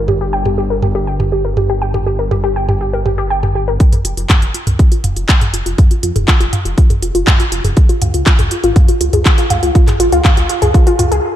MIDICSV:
0, 0, Header, 1, 4, 480
1, 0, Start_track
1, 0, Tempo, 495868
1, 1761, Time_signature, 4, 2, 24, 8
1, 10996, End_track
2, 0, Start_track
2, 0, Title_t, "Synth arpeggio sound"
2, 0, Program_c, 0, 84
2, 80, Note_on_c, 0, 67, 77
2, 172, Note_off_c, 0, 67, 0
2, 203, Note_on_c, 0, 67, 95
2, 256, Note_off_c, 0, 67, 0
2, 320, Note_on_c, 0, 79, 83
2, 411, Note_off_c, 0, 79, 0
2, 442, Note_on_c, 0, 67, 73
2, 532, Note_off_c, 0, 67, 0
2, 560, Note_on_c, 0, 67, 74
2, 652, Note_off_c, 0, 67, 0
2, 681, Note_on_c, 0, 70, 76
2, 735, Note_off_c, 0, 70, 0
2, 799, Note_on_c, 0, 67, 79
2, 891, Note_off_c, 0, 67, 0
2, 920, Note_on_c, 0, 67, 93
2, 974, Note_off_c, 0, 67, 0
2, 1039, Note_on_c, 0, 79, 73
2, 1131, Note_off_c, 0, 79, 0
2, 1159, Note_on_c, 0, 67, 76
2, 1250, Note_off_c, 0, 67, 0
2, 1279, Note_on_c, 0, 67, 76
2, 1371, Note_off_c, 0, 67, 0
2, 1400, Note_on_c, 0, 70, 72
2, 1454, Note_off_c, 0, 70, 0
2, 1520, Note_on_c, 0, 67, 73
2, 1611, Note_off_c, 0, 67, 0
2, 1641, Note_on_c, 0, 67, 100
2, 1695, Note_off_c, 0, 67, 0
2, 1758, Note_on_c, 0, 79, 81
2, 1851, Note_off_c, 0, 79, 0
2, 1879, Note_on_c, 0, 67, 73
2, 1970, Note_off_c, 0, 67, 0
2, 1998, Note_on_c, 0, 67, 77
2, 2091, Note_off_c, 0, 67, 0
2, 2119, Note_on_c, 0, 70, 72
2, 2174, Note_off_c, 0, 70, 0
2, 2238, Note_on_c, 0, 67, 85
2, 2330, Note_off_c, 0, 67, 0
2, 2359, Note_on_c, 0, 67, 99
2, 2414, Note_off_c, 0, 67, 0
2, 2479, Note_on_c, 0, 79, 73
2, 2571, Note_off_c, 0, 79, 0
2, 2600, Note_on_c, 0, 67, 76
2, 2690, Note_off_c, 0, 67, 0
2, 2719, Note_on_c, 0, 67, 77
2, 2811, Note_off_c, 0, 67, 0
2, 2840, Note_on_c, 0, 70, 74
2, 2895, Note_off_c, 0, 70, 0
2, 2958, Note_on_c, 0, 67, 70
2, 3050, Note_off_c, 0, 67, 0
2, 3079, Note_on_c, 0, 67, 103
2, 3134, Note_off_c, 0, 67, 0
2, 3198, Note_on_c, 0, 79, 77
2, 3291, Note_off_c, 0, 79, 0
2, 3320, Note_on_c, 0, 67, 73
2, 3411, Note_off_c, 0, 67, 0
2, 3439, Note_on_c, 0, 67, 71
2, 3531, Note_off_c, 0, 67, 0
2, 3560, Note_on_c, 0, 70, 75
2, 3615, Note_off_c, 0, 70, 0
2, 3677, Note_on_c, 0, 65, 79
2, 3770, Note_off_c, 0, 65, 0
2, 3800, Note_on_c, 0, 68, 74
2, 3854, Note_off_c, 0, 68, 0
2, 3919, Note_on_c, 0, 65, 79
2, 4011, Note_off_c, 0, 65, 0
2, 4040, Note_on_c, 0, 65, 93
2, 4095, Note_off_c, 0, 65, 0
2, 4158, Note_on_c, 0, 77, 81
2, 4251, Note_off_c, 0, 77, 0
2, 4280, Note_on_c, 0, 65, 72
2, 4370, Note_off_c, 0, 65, 0
2, 4398, Note_on_c, 0, 65, 73
2, 4491, Note_off_c, 0, 65, 0
2, 4520, Note_on_c, 0, 68, 77
2, 4574, Note_off_c, 0, 68, 0
2, 4639, Note_on_c, 0, 65, 83
2, 4731, Note_off_c, 0, 65, 0
2, 4759, Note_on_c, 0, 65, 99
2, 4814, Note_off_c, 0, 65, 0
2, 4879, Note_on_c, 0, 77, 75
2, 4971, Note_off_c, 0, 77, 0
2, 4999, Note_on_c, 0, 65, 77
2, 5090, Note_off_c, 0, 65, 0
2, 5238, Note_on_c, 0, 68, 75
2, 5294, Note_off_c, 0, 68, 0
2, 5358, Note_on_c, 0, 65, 74
2, 5450, Note_off_c, 0, 65, 0
2, 5478, Note_on_c, 0, 65, 96
2, 5534, Note_off_c, 0, 65, 0
2, 5599, Note_on_c, 0, 77, 78
2, 5691, Note_off_c, 0, 77, 0
2, 5720, Note_on_c, 0, 65, 74
2, 5811, Note_off_c, 0, 65, 0
2, 5838, Note_on_c, 0, 65, 81
2, 5931, Note_off_c, 0, 65, 0
2, 5959, Note_on_c, 0, 68, 74
2, 6014, Note_off_c, 0, 68, 0
2, 6079, Note_on_c, 0, 65, 83
2, 6171, Note_off_c, 0, 65, 0
2, 6199, Note_on_c, 0, 65, 99
2, 6254, Note_off_c, 0, 65, 0
2, 6318, Note_on_c, 0, 77, 74
2, 6411, Note_off_c, 0, 77, 0
2, 6439, Note_on_c, 0, 65, 78
2, 6530, Note_off_c, 0, 65, 0
2, 6558, Note_on_c, 0, 65, 85
2, 6651, Note_off_c, 0, 65, 0
2, 6679, Note_on_c, 0, 68, 75
2, 6734, Note_off_c, 0, 68, 0
2, 6799, Note_on_c, 0, 65, 75
2, 6891, Note_off_c, 0, 65, 0
2, 6919, Note_on_c, 0, 65, 101
2, 6974, Note_off_c, 0, 65, 0
2, 7039, Note_on_c, 0, 77, 83
2, 7131, Note_off_c, 0, 77, 0
2, 7160, Note_on_c, 0, 65, 76
2, 7250, Note_off_c, 0, 65, 0
2, 7278, Note_on_c, 0, 65, 73
2, 7370, Note_off_c, 0, 65, 0
2, 7399, Note_on_c, 0, 68, 74
2, 7454, Note_off_c, 0, 68, 0
2, 7518, Note_on_c, 0, 65, 78
2, 7611, Note_off_c, 0, 65, 0
2, 7640, Note_on_c, 0, 65, 100
2, 7695, Note_off_c, 0, 65, 0
2, 7761, Note_on_c, 0, 77, 80
2, 7852, Note_off_c, 0, 77, 0
2, 7881, Note_on_c, 0, 65, 75
2, 7971, Note_off_c, 0, 65, 0
2, 8001, Note_on_c, 0, 65, 87
2, 8092, Note_off_c, 0, 65, 0
2, 8122, Note_on_c, 0, 68, 77
2, 8176, Note_off_c, 0, 68, 0
2, 8241, Note_on_c, 0, 65, 78
2, 8332, Note_off_c, 0, 65, 0
2, 8360, Note_on_c, 0, 65, 108
2, 8415, Note_off_c, 0, 65, 0
2, 8601, Note_on_c, 0, 65, 78
2, 8691, Note_off_c, 0, 65, 0
2, 8720, Note_on_c, 0, 65, 78
2, 8811, Note_off_c, 0, 65, 0
2, 8841, Note_on_c, 0, 68, 82
2, 8895, Note_off_c, 0, 68, 0
2, 8960, Note_on_c, 0, 65, 83
2, 9052, Note_off_c, 0, 65, 0
2, 9082, Note_on_c, 0, 65, 100
2, 9136, Note_off_c, 0, 65, 0
2, 9199, Note_on_c, 0, 77, 76
2, 9291, Note_off_c, 0, 77, 0
2, 9320, Note_on_c, 0, 65, 73
2, 9411, Note_off_c, 0, 65, 0
2, 9438, Note_on_c, 0, 65, 80
2, 9531, Note_off_c, 0, 65, 0
2, 9559, Note_on_c, 0, 68, 76
2, 9614, Note_off_c, 0, 68, 0
2, 9679, Note_on_c, 0, 65, 84
2, 9771, Note_off_c, 0, 65, 0
2, 9801, Note_on_c, 0, 65, 101
2, 9855, Note_off_c, 0, 65, 0
2, 9919, Note_on_c, 0, 77, 87
2, 10011, Note_off_c, 0, 77, 0
2, 10041, Note_on_c, 0, 65, 75
2, 10131, Note_off_c, 0, 65, 0
2, 10159, Note_on_c, 0, 65, 80
2, 10251, Note_off_c, 0, 65, 0
2, 10280, Note_on_c, 0, 68, 80
2, 10334, Note_off_c, 0, 68, 0
2, 10400, Note_on_c, 0, 65, 84
2, 10491, Note_off_c, 0, 65, 0
2, 10520, Note_on_c, 0, 65, 100
2, 10575, Note_off_c, 0, 65, 0
2, 10639, Note_on_c, 0, 65, 78
2, 10754, Note_off_c, 0, 65, 0
2, 10760, Note_on_c, 0, 68, 81
2, 10851, Note_off_c, 0, 68, 0
2, 10996, End_track
3, 0, Start_track
3, 0, Title_t, "Detuned saw bass"
3, 0, Program_c, 1, 39
3, 0, Note_on_c, 1, 31, 88
3, 3655, Note_off_c, 1, 31, 0
3, 3920, Note_on_c, 1, 29, 87
3, 4000, Note_off_c, 1, 29, 0
3, 4041, Note_on_c, 1, 29, 78
3, 4120, Note_off_c, 1, 29, 0
3, 4280, Note_on_c, 1, 29, 72
3, 4359, Note_off_c, 1, 29, 0
3, 4521, Note_on_c, 1, 36, 79
3, 4600, Note_off_c, 1, 36, 0
3, 4879, Note_on_c, 1, 29, 88
3, 4960, Note_off_c, 1, 29, 0
3, 5000, Note_on_c, 1, 29, 85
3, 5080, Note_off_c, 1, 29, 0
3, 5359, Note_on_c, 1, 29, 90
3, 5440, Note_off_c, 1, 29, 0
3, 5480, Note_on_c, 1, 29, 82
3, 5560, Note_off_c, 1, 29, 0
3, 5841, Note_on_c, 1, 41, 92
3, 5921, Note_off_c, 1, 41, 0
3, 5962, Note_on_c, 1, 29, 80
3, 6041, Note_off_c, 1, 29, 0
3, 6202, Note_on_c, 1, 29, 79
3, 6280, Note_off_c, 1, 29, 0
3, 6442, Note_on_c, 1, 29, 78
3, 6521, Note_off_c, 1, 29, 0
3, 6801, Note_on_c, 1, 29, 88
3, 6881, Note_off_c, 1, 29, 0
3, 6923, Note_on_c, 1, 29, 85
3, 7001, Note_off_c, 1, 29, 0
3, 7281, Note_on_c, 1, 29, 90
3, 7361, Note_off_c, 1, 29, 0
3, 7403, Note_on_c, 1, 29, 83
3, 7481, Note_off_c, 1, 29, 0
3, 7761, Note_on_c, 1, 37, 93
3, 7841, Note_off_c, 1, 37, 0
3, 7884, Note_on_c, 1, 37, 83
3, 7962, Note_off_c, 1, 37, 0
3, 8121, Note_on_c, 1, 37, 78
3, 8200, Note_off_c, 1, 37, 0
3, 8363, Note_on_c, 1, 32, 81
3, 8441, Note_off_c, 1, 32, 0
3, 8721, Note_on_c, 1, 37, 91
3, 8801, Note_off_c, 1, 37, 0
3, 8841, Note_on_c, 1, 37, 83
3, 8920, Note_off_c, 1, 37, 0
3, 9200, Note_on_c, 1, 37, 90
3, 9280, Note_off_c, 1, 37, 0
3, 9320, Note_on_c, 1, 37, 82
3, 9400, Note_off_c, 1, 37, 0
3, 9680, Note_on_c, 1, 32, 95
3, 9761, Note_off_c, 1, 32, 0
3, 9799, Note_on_c, 1, 37, 85
3, 9879, Note_off_c, 1, 37, 0
3, 10041, Note_on_c, 1, 37, 77
3, 10120, Note_off_c, 1, 37, 0
3, 10281, Note_on_c, 1, 37, 80
3, 10360, Note_off_c, 1, 37, 0
3, 10639, Note_on_c, 1, 37, 93
3, 10720, Note_off_c, 1, 37, 0
3, 10759, Note_on_c, 1, 37, 88
3, 10839, Note_off_c, 1, 37, 0
3, 10996, End_track
4, 0, Start_track
4, 0, Title_t, "Drums"
4, 78, Note_on_c, 9, 45, 91
4, 175, Note_off_c, 9, 45, 0
4, 440, Note_on_c, 9, 45, 91
4, 537, Note_off_c, 9, 45, 0
4, 798, Note_on_c, 9, 45, 90
4, 895, Note_off_c, 9, 45, 0
4, 1159, Note_on_c, 9, 45, 91
4, 1256, Note_off_c, 9, 45, 0
4, 1519, Note_on_c, 9, 45, 88
4, 1616, Note_off_c, 9, 45, 0
4, 1880, Note_on_c, 9, 45, 89
4, 1977, Note_off_c, 9, 45, 0
4, 2239, Note_on_c, 9, 45, 88
4, 2336, Note_off_c, 9, 45, 0
4, 2600, Note_on_c, 9, 45, 89
4, 2696, Note_off_c, 9, 45, 0
4, 2959, Note_on_c, 9, 45, 88
4, 3055, Note_off_c, 9, 45, 0
4, 3320, Note_on_c, 9, 45, 89
4, 3417, Note_off_c, 9, 45, 0
4, 3679, Note_on_c, 9, 42, 55
4, 3680, Note_on_c, 9, 36, 111
4, 3776, Note_off_c, 9, 42, 0
4, 3777, Note_off_c, 9, 36, 0
4, 3799, Note_on_c, 9, 42, 53
4, 3799, Note_on_c, 9, 45, 84
4, 3896, Note_off_c, 9, 42, 0
4, 3896, Note_off_c, 9, 45, 0
4, 3919, Note_on_c, 9, 42, 100
4, 4016, Note_off_c, 9, 42, 0
4, 4041, Note_on_c, 9, 42, 54
4, 4137, Note_off_c, 9, 42, 0
4, 4159, Note_on_c, 9, 39, 121
4, 4159, Note_on_c, 9, 42, 54
4, 4159, Note_on_c, 9, 45, 86
4, 4160, Note_on_c, 9, 36, 116
4, 4256, Note_off_c, 9, 36, 0
4, 4256, Note_off_c, 9, 39, 0
4, 4256, Note_off_c, 9, 42, 0
4, 4256, Note_off_c, 9, 45, 0
4, 4280, Note_on_c, 9, 42, 55
4, 4377, Note_off_c, 9, 42, 0
4, 4399, Note_on_c, 9, 42, 100
4, 4496, Note_off_c, 9, 42, 0
4, 4520, Note_on_c, 9, 42, 54
4, 4520, Note_on_c, 9, 45, 89
4, 4617, Note_off_c, 9, 42, 0
4, 4617, Note_off_c, 9, 45, 0
4, 4639, Note_on_c, 9, 42, 57
4, 4640, Note_on_c, 9, 36, 116
4, 4736, Note_off_c, 9, 42, 0
4, 4737, Note_off_c, 9, 36, 0
4, 4760, Note_on_c, 9, 42, 54
4, 4856, Note_off_c, 9, 42, 0
4, 4878, Note_on_c, 9, 42, 98
4, 4878, Note_on_c, 9, 45, 85
4, 4975, Note_off_c, 9, 42, 0
4, 4975, Note_off_c, 9, 45, 0
4, 5000, Note_on_c, 9, 42, 55
4, 5097, Note_off_c, 9, 42, 0
4, 5119, Note_on_c, 9, 39, 117
4, 5119, Note_on_c, 9, 42, 54
4, 5120, Note_on_c, 9, 36, 119
4, 5216, Note_off_c, 9, 39, 0
4, 5216, Note_off_c, 9, 42, 0
4, 5217, Note_off_c, 9, 36, 0
4, 5240, Note_on_c, 9, 42, 54
4, 5240, Note_on_c, 9, 45, 89
4, 5337, Note_off_c, 9, 42, 0
4, 5337, Note_off_c, 9, 45, 0
4, 5359, Note_on_c, 9, 42, 102
4, 5456, Note_off_c, 9, 42, 0
4, 5480, Note_on_c, 9, 42, 54
4, 5577, Note_off_c, 9, 42, 0
4, 5598, Note_on_c, 9, 42, 53
4, 5598, Note_on_c, 9, 45, 82
4, 5600, Note_on_c, 9, 36, 122
4, 5695, Note_off_c, 9, 42, 0
4, 5695, Note_off_c, 9, 45, 0
4, 5696, Note_off_c, 9, 36, 0
4, 5720, Note_on_c, 9, 42, 53
4, 5817, Note_off_c, 9, 42, 0
4, 5838, Note_on_c, 9, 42, 108
4, 5935, Note_off_c, 9, 42, 0
4, 5961, Note_on_c, 9, 42, 52
4, 5961, Note_on_c, 9, 45, 85
4, 6057, Note_off_c, 9, 42, 0
4, 6057, Note_off_c, 9, 45, 0
4, 6080, Note_on_c, 9, 36, 123
4, 6080, Note_on_c, 9, 39, 119
4, 6080, Note_on_c, 9, 42, 55
4, 6176, Note_off_c, 9, 39, 0
4, 6176, Note_off_c, 9, 42, 0
4, 6177, Note_off_c, 9, 36, 0
4, 6201, Note_on_c, 9, 42, 57
4, 6298, Note_off_c, 9, 42, 0
4, 6320, Note_on_c, 9, 42, 102
4, 6320, Note_on_c, 9, 45, 88
4, 6417, Note_off_c, 9, 42, 0
4, 6417, Note_off_c, 9, 45, 0
4, 6441, Note_on_c, 9, 42, 56
4, 6538, Note_off_c, 9, 42, 0
4, 6560, Note_on_c, 9, 36, 125
4, 6560, Note_on_c, 9, 42, 54
4, 6656, Note_off_c, 9, 42, 0
4, 6657, Note_off_c, 9, 36, 0
4, 6681, Note_on_c, 9, 42, 55
4, 6681, Note_on_c, 9, 45, 84
4, 6778, Note_off_c, 9, 42, 0
4, 6778, Note_off_c, 9, 45, 0
4, 6800, Note_on_c, 9, 42, 103
4, 6897, Note_off_c, 9, 42, 0
4, 6920, Note_on_c, 9, 42, 53
4, 7017, Note_off_c, 9, 42, 0
4, 7039, Note_on_c, 9, 39, 122
4, 7039, Note_on_c, 9, 42, 55
4, 7039, Note_on_c, 9, 45, 86
4, 7040, Note_on_c, 9, 36, 124
4, 7136, Note_off_c, 9, 39, 0
4, 7136, Note_off_c, 9, 42, 0
4, 7136, Note_off_c, 9, 45, 0
4, 7137, Note_off_c, 9, 36, 0
4, 7160, Note_on_c, 9, 42, 55
4, 7257, Note_off_c, 9, 42, 0
4, 7280, Note_on_c, 9, 42, 111
4, 7377, Note_off_c, 9, 42, 0
4, 7400, Note_on_c, 9, 42, 54
4, 7400, Note_on_c, 9, 45, 84
4, 7497, Note_off_c, 9, 42, 0
4, 7497, Note_off_c, 9, 45, 0
4, 7519, Note_on_c, 9, 42, 54
4, 7520, Note_on_c, 9, 36, 119
4, 7615, Note_off_c, 9, 42, 0
4, 7617, Note_off_c, 9, 36, 0
4, 7640, Note_on_c, 9, 42, 52
4, 7737, Note_off_c, 9, 42, 0
4, 7759, Note_on_c, 9, 42, 107
4, 7759, Note_on_c, 9, 45, 88
4, 7856, Note_off_c, 9, 42, 0
4, 7856, Note_off_c, 9, 45, 0
4, 7880, Note_on_c, 9, 42, 53
4, 7977, Note_off_c, 9, 42, 0
4, 7999, Note_on_c, 9, 39, 123
4, 7999, Note_on_c, 9, 42, 55
4, 8000, Note_on_c, 9, 36, 124
4, 8095, Note_off_c, 9, 39, 0
4, 8095, Note_off_c, 9, 42, 0
4, 8097, Note_off_c, 9, 36, 0
4, 8120, Note_on_c, 9, 42, 55
4, 8120, Note_on_c, 9, 45, 87
4, 8217, Note_off_c, 9, 42, 0
4, 8217, Note_off_c, 9, 45, 0
4, 8238, Note_on_c, 9, 42, 106
4, 8335, Note_off_c, 9, 42, 0
4, 8359, Note_on_c, 9, 42, 53
4, 8456, Note_off_c, 9, 42, 0
4, 8479, Note_on_c, 9, 42, 55
4, 8479, Note_on_c, 9, 45, 87
4, 8480, Note_on_c, 9, 36, 126
4, 8575, Note_off_c, 9, 42, 0
4, 8575, Note_off_c, 9, 45, 0
4, 8577, Note_off_c, 9, 36, 0
4, 8600, Note_on_c, 9, 42, 54
4, 8697, Note_off_c, 9, 42, 0
4, 8719, Note_on_c, 9, 42, 107
4, 8816, Note_off_c, 9, 42, 0
4, 8839, Note_on_c, 9, 42, 54
4, 8839, Note_on_c, 9, 45, 83
4, 8936, Note_off_c, 9, 42, 0
4, 8936, Note_off_c, 9, 45, 0
4, 8959, Note_on_c, 9, 39, 115
4, 8959, Note_on_c, 9, 42, 52
4, 8960, Note_on_c, 9, 36, 127
4, 9056, Note_off_c, 9, 36, 0
4, 9056, Note_off_c, 9, 39, 0
4, 9056, Note_off_c, 9, 42, 0
4, 9080, Note_on_c, 9, 42, 55
4, 9176, Note_off_c, 9, 42, 0
4, 9199, Note_on_c, 9, 42, 114
4, 9199, Note_on_c, 9, 45, 90
4, 9295, Note_off_c, 9, 42, 0
4, 9295, Note_off_c, 9, 45, 0
4, 9320, Note_on_c, 9, 42, 52
4, 9417, Note_off_c, 9, 42, 0
4, 9439, Note_on_c, 9, 36, 126
4, 9439, Note_on_c, 9, 42, 54
4, 9536, Note_off_c, 9, 36, 0
4, 9536, Note_off_c, 9, 42, 0
4, 9560, Note_on_c, 9, 39, 36
4, 9560, Note_on_c, 9, 42, 51
4, 9560, Note_on_c, 9, 45, 90
4, 9657, Note_off_c, 9, 39, 0
4, 9657, Note_off_c, 9, 42, 0
4, 9657, Note_off_c, 9, 45, 0
4, 9679, Note_on_c, 9, 42, 109
4, 9776, Note_off_c, 9, 42, 0
4, 9800, Note_on_c, 9, 42, 55
4, 9897, Note_off_c, 9, 42, 0
4, 9919, Note_on_c, 9, 39, 119
4, 9919, Note_on_c, 9, 42, 54
4, 9919, Note_on_c, 9, 45, 89
4, 9920, Note_on_c, 9, 36, 127
4, 10015, Note_off_c, 9, 39, 0
4, 10015, Note_off_c, 9, 42, 0
4, 10015, Note_off_c, 9, 45, 0
4, 10016, Note_off_c, 9, 36, 0
4, 10040, Note_on_c, 9, 42, 55
4, 10137, Note_off_c, 9, 42, 0
4, 10158, Note_on_c, 9, 42, 104
4, 10255, Note_off_c, 9, 42, 0
4, 10280, Note_on_c, 9, 42, 54
4, 10280, Note_on_c, 9, 45, 87
4, 10377, Note_off_c, 9, 42, 0
4, 10377, Note_off_c, 9, 45, 0
4, 10399, Note_on_c, 9, 42, 53
4, 10400, Note_on_c, 9, 36, 127
4, 10496, Note_off_c, 9, 42, 0
4, 10497, Note_off_c, 9, 36, 0
4, 10520, Note_on_c, 9, 42, 56
4, 10617, Note_off_c, 9, 42, 0
4, 10639, Note_on_c, 9, 42, 109
4, 10639, Note_on_c, 9, 45, 89
4, 10736, Note_off_c, 9, 42, 0
4, 10736, Note_off_c, 9, 45, 0
4, 10761, Note_on_c, 9, 42, 53
4, 10858, Note_off_c, 9, 42, 0
4, 10996, End_track
0, 0, End_of_file